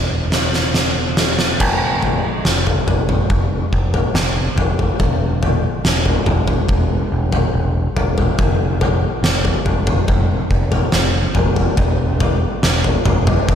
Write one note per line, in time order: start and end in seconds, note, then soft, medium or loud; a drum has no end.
0.00 1.60 E1 medium
0.32 snare medium
0.53 snare soft
0.74 snare medium
1.17 snare medium
1.39 snare medium
1.60 2.26 F1 medium
1.60 kick medium
1.60 floor tom medium
1.60 crash medium
2.02 floor tom medium
2.45 2.78 F1 medium
2.45 snare medium
2.67 floor tom medium
2.87 3.20 F1 medium
2.87 floor tom medium
3.09 floor tom medium
3.09 mid tom medium
3.30 3.63 F1 medium
3.30 kick medium
3.30 floor tom medium
3.73 4.05 F1 medium
3.73 kick medium
3.94 floor tom medium
4.14 4.47 F1 medium
4.14 snare medium
4.56 4.89 F1 medium
4.56 floor tom medium
4.79 floor tom medium
5.00 5.65 E1 medium
5.00 kick medium
5.00 floor tom medium
5.43 floor tom medium
5.85 6.17 E1 medium
5.85 snare medium
6.06 floor tom medium
6.26 6.60 E1 medium
6.26 floor tom medium
6.26 mid tom medium
6.48 floor tom medium
6.48 mid tom medium
6.69 7.02 E1 medium
6.69 kick medium
6.69 floor tom medium
7.12 7.45 E1 medium
7.33 floor tom medium
7.54 7.86 E1 medium
7.97 8.29 E1 medium
7.97 floor tom medium
8.18 floor tom medium
8.39 9.04 F1 medium
8.39 kick medium
8.39 floor tom medium
8.81 floor tom medium
9.23 9.56 F1 medium
9.23 snare medium
9.45 floor tom medium
9.65 9.98 F1 medium
9.65 floor tom medium
9.87 floor tom medium
9.87 mid tom medium
10.08 10.41 F1 medium
10.08 kick loud
10.08 floor tom medium
10.51 10.84 F1 medium
10.51 kick medium
10.72 floor tom medium
10.92 11.26 F1 medium
10.92 snare medium
11.35 11.69 F1 medium
11.35 floor tom medium
11.56 floor tom medium
11.77 12.44 E1 medium
11.77 kick loud
11.77 floor tom medium
12.20 floor tom medium
12.63 12.96 E1 medium
12.63 snare medium
12.84 floor tom medium
13.05 13.39 E1 medium
13.05 floor tom medium
13.05 mid tom medium
13.27 floor tom medium
13.27 mid tom medium
13.48 13.55 E1 medium
13.48 kick loud
13.48 floor tom medium